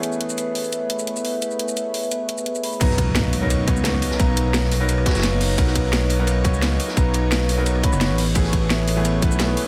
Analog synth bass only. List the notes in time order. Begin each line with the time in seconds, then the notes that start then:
2.81 B1
3.68 B1
3.77 C#2
4.20 B1
5.15 F#1
5.33 F#1
5.58 B1
6.45 B1
6.54 C#2
6.97 B1
7.92 F#1
8.10 A1
8.36 A1
9.22 A1
9.31 B1